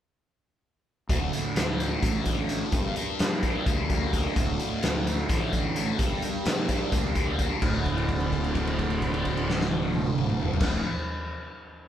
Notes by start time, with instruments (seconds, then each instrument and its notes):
1.09 fingered electric bass D1, distorted electric guitar D2, transistor combo organ D4 F#4 A4 D5, kick, closed hi-hat
1.33 distorted electric guitar A2, closed hi-hat
1.55 fingered electric bass D2, distorted electric guitar D3, snare, closed hi-hat
1.80 distorted electric guitar A3, closed hi-hat
2.02 fingered electric bass A1, distorted electric guitar A2, kick, closed hi-hat
2.25 distorted electric guitar D3, kick, closed hi-hat
2.49 distorted electric guitar A3, closed hi-hat
2.72 fingered electric bass G1, distorted electric guitar G2, transistor combo organ G4 A#4, kick, closed hi-hat
2.96 distorted electric guitar G3, closed hi-hat
3.19 fingered electric bass G2, distorted electric guitar A#3, snare, closed hi-hat
3.43 distorted electric guitar D4, kick, closed hi-hat
3.66 fingered electric bass D2, distorted electric guitar G3, kick, closed hi-hat
3.90 distorted electric guitar A#3, kick, closed hi-hat
4.13 distorted electric guitar D4, kick, closed hi-hat
4.35 fingered electric bass D1, distorted electric guitar D2, transistor combo organ F#4 A4 D5, kick, closed hi-hat
4.59 distorted electric guitar A2, closed hi-hat
4.83 fingered electric bass D2, distorted electric guitar D3, snare, closed hi-hat
5.07 distorted electric guitar A3, closed hi-hat
5.29 fingered electric bass A1, distorted electric guitar A2, kick, snare, closed hi-hat
5.53 distorted electric guitar D3, kick, closed hi-hat
5.76 distorted electric guitar A3, closed hi-hat
5.98 fingered electric bass G1, distorted electric guitar G2, transistor combo organ G4 A#4, kick, closed hi-hat
6.22 distorted electric guitar G3, closed hi-hat
6.45 fingered electric bass G2, distorted electric guitar A#3, snare, closed hi-hat
6.69 distorted electric guitar D4, kick, closed hi-hat
6.92 fingered electric bass D2, distorted electric guitar G3, kick, closed hi-hat
7.15 distorted electric guitar A#3, kick, closed hi-hat
7.39 distorted electric guitar D4, kick, closed hi-hat
7.60 fingered electric bass D1, distorted electric guitar D2 A2, transistor combo organ D4 F#4 A4 D5, kick, crash
7.64 distorted electric guitar D3
7.86 kick, crash
7.98 crash
8.09 kick, crash
8.20 crash
8.32 kick, crash
8.44 crash
8.55 kick, crash
8.67 crash
8.79 kick, crash
8.90 crash
9.02 kick, crash
9.14 crash
9.25 kick, crash
9.37 crash
9.50 snare
9.61 snare
9.71 high tom
9.83 high tom
9.95 mid tom
10.06 mid tom
10.18 mid tom
10.30 mid tom
10.41 floor tom
10.53 floor tom
10.60 fingered electric bass D1, distorted electric guitar D2 A2 D3, transistor combo organ D4 F#4 A4 D5, kick, snare, crash